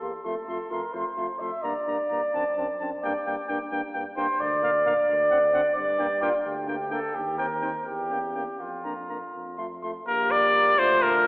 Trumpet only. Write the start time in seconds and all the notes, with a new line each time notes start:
0.02 C6
0.25 C6
0.48 C6
0.71 C6
0.94 C6
1.17 C6
1.41 C6
1.63 A#5
1.87 A#5
2.11 A#5
2.34 A5
2.56 A5
2.80 A5
3.03 G5
3.26 G5
3.48 G5
3.71 G5
3.94 G5
4.16 G5
4.63 F5
4.86 F5
5.30 F#5
5.53 F#5
5.99 G5
6.22 G5
6.67 G5
6.91 G5
7.38 G5
7.62 G5
8.10 G5
8.34 G5
8.84 A#5
9.09 A#5
9.58 C6
9.82 C6
10.07 A#4
10.31 D5
10.79 C5
11.02 A#4